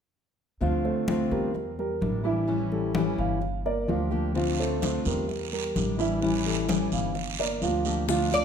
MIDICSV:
0, 0, Header, 1, 7, 480
1, 0, Start_track
1, 0, Key_signature, -1, "minor"
1, 0, Tempo, 467290
1, 631, Time_signature, 4, 2, 24, 8
1, 8676, End_track
2, 0, Start_track
2, 0, Title_t, "Cuban tres"
2, 0, Program_c, 0, 25
2, 8565, Note_on_c, 0, 74, 85
2, 8676, Note_off_c, 0, 74, 0
2, 8676, End_track
3, 0, Start_track
3, 0, Title_t, "Grand piano"
3, 0, Program_c, 1, 0
3, 631, Note_on_c, 1, 53, 64
3, 633, Note_on_c, 1, 65, 61
3, 635, Note_on_c, 1, 77, 64
3, 828, Note_off_c, 1, 53, 0
3, 829, Note_off_c, 1, 65, 0
3, 830, Note_off_c, 1, 77, 0
3, 866, Note_on_c, 1, 57, 59
3, 870, Note_on_c, 1, 69, 60
3, 872, Note_on_c, 1, 72, 57
3, 1262, Note_off_c, 1, 57, 0
3, 1264, Note_off_c, 1, 69, 0
3, 1265, Note_off_c, 1, 72, 0
3, 1349, Note_on_c, 1, 55, 61
3, 1353, Note_on_c, 1, 67, 62
3, 1354, Note_on_c, 1, 70, 61
3, 1744, Note_off_c, 1, 55, 0
3, 1746, Note_off_c, 1, 67, 0
3, 1747, Note_off_c, 1, 70, 0
3, 1835, Note_on_c, 1, 55, 63
3, 1838, Note_on_c, 1, 67, 63
3, 1842, Note_on_c, 1, 70, 62
3, 2227, Note_off_c, 1, 55, 0
3, 2229, Note_off_c, 1, 67, 0
3, 2231, Note_off_c, 1, 70, 0
3, 2307, Note_on_c, 1, 52, 73
3, 2309, Note_on_c, 1, 64, 73
3, 2313, Note_on_c, 1, 76, 74
3, 2703, Note_off_c, 1, 52, 0
3, 2703, Note_off_c, 1, 64, 0
3, 2706, Note_off_c, 1, 76, 0
3, 2794, Note_on_c, 1, 55, 61
3, 2794, Note_on_c, 1, 67, 60
3, 2797, Note_on_c, 1, 69, 61
3, 3187, Note_off_c, 1, 55, 0
3, 3187, Note_off_c, 1, 67, 0
3, 3188, Note_off_c, 1, 69, 0
3, 3277, Note_on_c, 1, 77, 74
3, 3669, Note_off_c, 1, 77, 0
3, 3753, Note_on_c, 1, 58, 63
3, 3756, Note_on_c, 1, 70, 61
3, 3759, Note_on_c, 1, 74, 62
3, 3949, Note_off_c, 1, 58, 0
3, 3951, Note_off_c, 1, 70, 0
3, 3953, Note_off_c, 1, 74, 0
3, 3992, Note_on_c, 1, 53, 70
3, 3996, Note_on_c, 1, 65, 68
3, 3999, Note_on_c, 1, 77, 68
3, 4386, Note_off_c, 1, 53, 0
3, 4388, Note_off_c, 1, 65, 0
3, 4390, Note_off_c, 1, 77, 0
3, 4480, Note_on_c, 1, 53, 64
3, 4483, Note_on_c, 1, 65, 65
3, 4483, Note_on_c, 1, 77, 69
3, 4674, Note_off_c, 1, 53, 0
3, 4676, Note_off_c, 1, 65, 0
3, 4676, Note_off_c, 1, 77, 0
3, 4718, Note_on_c, 1, 57, 65
3, 4722, Note_on_c, 1, 69, 64
3, 4724, Note_on_c, 1, 72, 62
3, 5109, Note_off_c, 1, 57, 0
3, 5112, Note_off_c, 1, 69, 0
3, 5113, Note_off_c, 1, 72, 0
3, 5197, Note_on_c, 1, 55, 65
3, 5200, Note_on_c, 1, 67, 65
3, 5207, Note_on_c, 1, 70, 61
3, 5589, Note_off_c, 1, 55, 0
3, 5591, Note_off_c, 1, 67, 0
3, 5595, Note_off_c, 1, 70, 0
3, 5675, Note_on_c, 1, 55, 62
3, 5678, Note_on_c, 1, 67, 65
3, 5681, Note_on_c, 1, 70, 62
3, 6068, Note_off_c, 1, 55, 0
3, 6070, Note_off_c, 1, 67, 0
3, 6071, Note_off_c, 1, 70, 0
3, 6151, Note_on_c, 1, 52, 77
3, 6156, Note_on_c, 1, 64, 75
3, 6161, Note_on_c, 1, 76, 79
3, 6546, Note_off_c, 1, 52, 0
3, 6548, Note_off_c, 1, 64, 0
3, 6551, Note_off_c, 1, 76, 0
3, 6633, Note_on_c, 1, 55, 61
3, 6637, Note_on_c, 1, 67, 58
3, 6640, Note_on_c, 1, 69, 59
3, 7027, Note_off_c, 1, 55, 0
3, 7029, Note_off_c, 1, 67, 0
3, 7031, Note_off_c, 1, 69, 0
3, 7117, Note_on_c, 1, 77, 71
3, 7509, Note_off_c, 1, 77, 0
3, 7592, Note_on_c, 1, 58, 64
3, 7595, Note_on_c, 1, 70, 60
3, 7597, Note_on_c, 1, 74, 63
3, 7789, Note_off_c, 1, 58, 0
3, 7791, Note_off_c, 1, 70, 0
3, 7792, Note_off_c, 1, 74, 0
3, 7829, Note_on_c, 1, 53, 70
3, 7834, Note_on_c, 1, 65, 70
3, 7837, Note_on_c, 1, 77, 68
3, 8224, Note_off_c, 1, 53, 0
3, 8227, Note_off_c, 1, 65, 0
3, 8228, Note_off_c, 1, 77, 0
3, 8311, Note_on_c, 1, 53, 69
3, 8312, Note_on_c, 1, 65, 68
3, 8316, Note_on_c, 1, 77, 69
3, 8676, Note_off_c, 1, 53, 0
3, 8676, Note_off_c, 1, 65, 0
3, 8676, Note_off_c, 1, 77, 0
3, 8676, End_track
4, 0, Start_track
4, 0, Title_t, "Steel-string acoustic guitar"
4, 0, Program_c, 2, 25
4, 622, Note_on_c, 2, 50, 66
4, 628, Note_on_c, 2, 57, 66
4, 634, Note_on_c, 2, 60, 68
4, 638, Note_on_c, 2, 65, 67
4, 1093, Note_off_c, 2, 50, 0
4, 1100, Note_off_c, 2, 57, 0
4, 1103, Note_off_c, 2, 60, 0
4, 1105, Note_off_c, 2, 65, 0
4, 1106, Note_on_c, 2, 50, 65
4, 1114, Note_on_c, 2, 57, 63
4, 1118, Note_on_c, 2, 60, 62
4, 1120, Note_on_c, 2, 65, 73
4, 1569, Note_off_c, 2, 50, 0
4, 1583, Note_off_c, 2, 57, 0
4, 1585, Note_off_c, 2, 60, 0
4, 1586, Note_off_c, 2, 65, 0
4, 2060, Note_on_c, 2, 50, 43
4, 2069, Note_on_c, 2, 55, 42
4, 2071, Note_on_c, 2, 62, 42
4, 2077, Note_on_c, 2, 64, 41
4, 2283, Note_off_c, 2, 64, 0
4, 2293, Note_off_c, 2, 62, 0
4, 2295, Note_on_c, 2, 64, 53
4, 2296, Note_off_c, 2, 50, 0
4, 2301, Note_off_c, 2, 55, 0
4, 2305, Note_on_c, 2, 62, 60
4, 2315, Note_on_c, 2, 55, 49
4, 2531, Note_off_c, 2, 55, 0
4, 2534, Note_off_c, 2, 64, 0
4, 2539, Note_off_c, 2, 62, 0
4, 2540, Note_on_c, 2, 52, 60
4, 2543, Note_on_c, 2, 55, 67
4, 2551, Note_on_c, 2, 61, 66
4, 2552, Note_on_c, 2, 64, 70
4, 3010, Note_off_c, 2, 52, 0
4, 3018, Note_off_c, 2, 55, 0
4, 3022, Note_off_c, 2, 61, 0
4, 3022, Note_off_c, 2, 64, 0
4, 3022, Note_on_c, 2, 52, 66
4, 3028, Note_on_c, 2, 55, 70
4, 3035, Note_on_c, 2, 61, 70
4, 3040, Note_on_c, 2, 64, 75
4, 3498, Note_off_c, 2, 52, 0
4, 3501, Note_off_c, 2, 55, 0
4, 3504, Note_off_c, 2, 61, 0
4, 3506, Note_off_c, 2, 64, 0
4, 3982, Note_on_c, 2, 53, 42
4, 3988, Note_on_c, 2, 58, 48
4, 3996, Note_on_c, 2, 62, 44
4, 3999, Note_on_c, 2, 67, 46
4, 4205, Note_off_c, 2, 67, 0
4, 4210, Note_off_c, 2, 62, 0
4, 4217, Note_on_c, 2, 67, 60
4, 4218, Note_off_c, 2, 53, 0
4, 4218, Note_off_c, 2, 58, 0
4, 4223, Note_on_c, 2, 62, 53
4, 4230, Note_on_c, 2, 58, 55
4, 4234, Note_on_c, 2, 53, 53
4, 4455, Note_off_c, 2, 67, 0
4, 4458, Note_off_c, 2, 53, 0
4, 4458, Note_off_c, 2, 62, 0
4, 4462, Note_off_c, 2, 58, 0
4, 4462, Note_on_c, 2, 50, 61
4, 4469, Note_on_c, 2, 57, 63
4, 4473, Note_on_c, 2, 60, 64
4, 4477, Note_on_c, 2, 65, 67
4, 4928, Note_off_c, 2, 50, 0
4, 4933, Note_off_c, 2, 57, 0
4, 4940, Note_on_c, 2, 50, 62
4, 4941, Note_off_c, 2, 60, 0
4, 4945, Note_off_c, 2, 65, 0
4, 4946, Note_on_c, 2, 57, 61
4, 4953, Note_on_c, 2, 60, 67
4, 4958, Note_on_c, 2, 65, 69
4, 5417, Note_off_c, 2, 50, 0
4, 5420, Note_off_c, 2, 57, 0
4, 5423, Note_off_c, 2, 60, 0
4, 5426, Note_off_c, 2, 65, 0
4, 5904, Note_on_c, 2, 50, 40
4, 5912, Note_on_c, 2, 55, 41
4, 5916, Note_on_c, 2, 62, 50
4, 5921, Note_on_c, 2, 64, 48
4, 6132, Note_off_c, 2, 64, 0
4, 6139, Note_off_c, 2, 50, 0
4, 6139, Note_off_c, 2, 62, 0
4, 6143, Note_off_c, 2, 55, 0
4, 6145, Note_on_c, 2, 64, 58
4, 6151, Note_on_c, 2, 62, 60
4, 6161, Note_on_c, 2, 55, 52
4, 6374, Note_off_c, 2, 55, 0
4, 6379, Note_off_c, 2, 64, 0
4, 6382, Note_off_c, 2, 62, 0
4, 6383, Note_on_c, 2, 52, 62
4, 6386, Note_on_c, 2, 55, 67
4, 6394, Note_on_c, 2, 61, 67
4, 6399, Note_on_c, 2, 64, 72
4, 6846, Note_off_c, 2, 52, 0
4, 6851, Note_off_c, 2, 55, 0
4, 6856, Note_off_c, 2, 61, 0
4, 6858, Note_on_c, 2, 52, 64
4, 6863, Note_off_c, 2, 64, 0
4, 6864, Note_on_c, 2, 55, 70
4, 6868, Note_on_c, 2, 61, 67
4, 6875, Note_on_c, 2, 64, 66
4, 7336, Note_off_c, 2, 52, 0
4, 7339, Note_off_c, 2, 55, 0
4, 7341, Note_off_c, 2, 61, 0
4, 7344, Note_off_c, 2, 64, 0
4, 7819, Note_on_c, 2, 53, 41
4, 7829, Note_on_c, 2, 58, 44
4, 7833, Note_on_c, 2, 62, 47
4, 7839, Note_on_c, 2, 67, 49
4, 8047, Note_off_c, 2, 67, 0
4, 8055, Note_off_c, 2, 62, 0
4, 8056, Note_off_c, 2, 53, 0
4, 8060, Note_on_c, 2, 67, 60
4, 8061, Note_off_c, 2, 58, 0
4, 8067, Note_on_c, 2, 62, 59
4, 8072, Note_on_c, 2, 58, 50
4, 8076, Note_on_c, 2, 53, 50
4, 8292, Note_off_c, 2, 53, 0
4, 8296, Note_off_c, 2, 67, 0
4, 8296, Note_on_c, 2, 50, 66
4, 8300, Note_off_c, 2, 58, 0
4, 8300, Note_off_c, 2, 62, 0
4, 8304, Note_on_c, 2, 57, 66
4, 8312, Note_on_c, 2, 62, 66
4, 8312, Note_on_c, 2, 65, 75
4, 8530, Note_off_c, 2, 65, 0
4, 8534, Note_off_c, 2, 50, 0
4, 8538, Note_off_c, 2, 57, 0
4, 8538, Note_off_c, 2, 62, 0
4, 8542, Note_on_c, 2, 65, 43
4, 8550, Note_on_c, 2, 62, 38
4, 8561, Note_on_c, 2, 57, 37
4, 8676, Note_off_c, 2, 57, 0
4, 8676, Note_off_c, 2, 62, 0
4, 8676, Note_off_c, 2, 65, 0
4, 8676, End_track
5, 0, Start_track
5, 0, Title_t, "Upright bass"
5, 0, Program_c, 3, 32
5, 628, Note_on_c, 3, 38, 82
5, 1308, Note_off_c, 3, 38, 0
5, 1348, Note_on_c, 3, 40, 83
5, 2029, Note_off_c, 3, 40, 0
5, 2070, Note_on_c, 3, 33, 80
5, 3206, Note_off_c, 3, 33, 0
5, 3269, Note_on_c, 3, 31, 80
5, 3950, Note_off_c, 3, 31, 0
5, 3990, Note_on_c, 3, 38, 78
5, 5126, Note_off_c, 3, 38, 0
5, 5195, Note_on_c, 3, 40, 79
5, 5873, Note_off_c, 3, 40, 0
5, 5915, Note_on_c, 3, 33, 80
5, 7049, Note_off_c, 3, 33, 0
5, 7108, Note_on_c, 3, 31, 81
5, 7789, Note_off_c, 3, 31, 0
5, 7823, Note_on_c, 3, 38, 75
5, 8676, Note_off_c, 3, 38, 0
5, 8676, End_track
6, 0, Start_track
6, 0, Title_t, "Muted steel-string acoustic guitar strokes"
6, 1581, Note_on_c, 9, 29, 51
6, 1684, Note_off_c, 9, 29, 0
6, 3504, Note_on_c, 9, 29, 49
6, 3607, Note_off_c, 9, 29, 0
6, 5430, Note_on_c, 9, 29, 51
6, 5533, Note_off_c, 9, 29, 0
6, 7343, Note_on_c, 9, 29, 49
6, 7446, Note_off_c, 9, 29, 0
6, 8676, End_track
7, 0, Start_track
7, 0, Title_t, "Drums"
7, 628, Note_on_c, 9, 63, 30
7, 731, Note_off_c, 9, 63, 0
7, 872, Note_on_c, 9, 63, 29
7, 975, Note_off_c, 9, 63, 0
7, 1108, Note_on_c, 9, 63, 79
7, 1210, Note_off_c, 9, 63, 0
7, 1351, Note_on_c, 9, 63, 29
7, 1453, Note_off_c, 9, 63, 0
7, 1599, Note_on_c, 9, 63, 29
7, 1701, Note_off_c, 9, 63, 0
7, 1838, Note_on_c, 9, 63, 28
7, 1941, Note_off_c, 9, 63, 0
7, 2075, Note_on_c, 9, 63, 69
7, 2178, Note_off_c, 9, 63, 0
7, 2548, Note_on_c, 9, 63, 31
7, 2650, Note_off_c, 9, 63, 0
7, 2792, Note_on_c, 9, 63, 30
7, 2895, Note_off_c, 9, 63, 0
7, 3027, Note_on_c, 9, 63, 83
7, 3129, Note_off_c, 9, 63, 0
7, 3271, Note_on_c, 9, 63, 29
7, 3374, Note_off_c, 9, 63, 0
7, 3509, Note_on_c, 9, 63, 30
7, 3611, Note_off_c, 9, 63, 0
7, 3758, Note_on_c, 9, 63, 27
7, 3861, Note_off_c, 9, 63, 0
7, 3997, Note_on_c, 9, 63, 28
7, 4100, Note_off_c, 9, 63, 0
7, 4472, Note_on_c, 9, 74, 62
7, 4477, Note_on_c, 9, 63, 30
7, 4574, Note_off_c, 9, 74, 0
7, 4580, Note_off_c, 9, 63, 0
7, 4718, Note_on_c, 9, 63, 30
7, 4821, Note_off_c, 9, 63, 0
7, 4953, Note_on_c, 9, 73, 60
7, 4961, Note_on_c, 9, 63, 78
7, 5056, Note_off_c, 9, 73, 0
7, 5063, Note_off_c, 9, 63, 0
7, 5192, Note_on_c, 9, 73, 62
7, 5196, Note_on_c, 9, 63, 30
7, 5294, Note_off_c, 9, 73, 0
7, 5298, Note_off_c, 9, 63, 0
7, 5435, Note_on_c, 9, 74, 60
7, 5443, Note_on_c, 9, 63, 30
7, 5537, Note_off_c, 9, 74, 0
7, 5546, Note_off_c, 9, 63, 0
7, 5680, Note_on_c, 9, 63, 27
7, 5783, Note_off_c, 9, 63, 0
7, 5916, Note_on_c, 9, 63, 72
7, 5918, Note_on_c, 9, 73, 62
7, 6018, Note_off_c, 9, 63, 0
7, 6020, Note_off_c, 9, 73, 0
7, 6154, Note_on_c, 9, 73, 60
7, 6256, Note_off_c, 9, 73, 0
7, 6394, Note_on_c, 9, 74, 62
7, 6398, Note_on_c, 9, 63, 32
7, 6496, Note_off_c, 9, 74, 0
7, 6501, Note_off_c, 9, 63, 0
7, 6636, Note_on_c, 9, 63, 29
7, 6739, Note_off_c, 9, 63, 0
7, 6867, Note_on_c, 9, 73, 62
7, 6872, Note_on_c, 9, 63, 78
7, 6970, Note_off_c, 9, 73, 0
7, 6975, Note_off_c, 9, 63, 0
7, 7108, Note_on_c, 9, 73, 63
7, 7118, Note_on_c, 9, 63, 29
7, 7211, Note_off_c, 9, 73, 0
7, 7221, Note_off_c, 9, 63, 0
7, 7346, Note_on_c, 9, 74, 63
7, 7356, Note_on_c, 9, 63, 31
7, 7448, Note_off_c, 9, 74, 0
7, 7459, Note_off_c, 9, 63, 0
7, 7597, Note_on_c, 9, 63, 29
7, 7700, Note_off_c, 9, 63, 0
7, 7827, Note_on_c, 9, 73, 62
7, 7832, Note_on_c, 9, 63, 28
7, 7930, Note_off_c, 9, 73, 0
7, 7935, Note_off_c, 9, 63, 0
7, 8063, Note_on_c, 9, 73, 59
7, 8166, Note_off_c, 9, 73, 0
7, 8303, Note_on_c, 9, 74, 64
7, 8307, Note_on_c, 9, 60, 61
7, 8310, Note_on_c, 9, 70, 79
7, 8312, Note_on_c, 9, 63, 32
7, 8406, Note_off_c, 9, 74, 0
7, 8410, Note_off_c, 9, 60, 0
7, 8413, Note_off_c, 9, 70, 0
7, 8415, Note_off_c, 9, 63, 0
7, 8546, Note_on_c, 9, 70, 26
7, 8552, Note_on_c, 9, 60, 29
7, 8552, Note_on_c, 9, 63, 31
7, 8649, Note_off_c, 9, 70, 0
7, 8654, Note_off_c, 9, 60, 0
7, 8654, Note_off_c, 9, 63, 0
7, 8676, End_track
0, 0, End_of_file